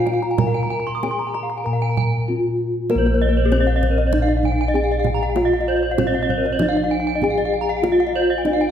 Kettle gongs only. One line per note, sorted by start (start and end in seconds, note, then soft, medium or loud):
0.00 0.99 A#2 medium
0.39 2.25 A#4 medium
1.04 1.12 C4 soft
1.67 3.49 A#2 soft
2.30 2.38 C4 soft
2.90 4.71 A#4 medium
2.95 6.59 A#1 medium
3.51 3.59 C4 soft
4.74 4.82 C4 soft
5.36 7.17 F4 medium
5.98 6.06 C4 soft
6.60 8.41 F3 medium
7.22 7.30 C4 soft
7.83 8.71 F4 medium
8.45 8.53 C4 soft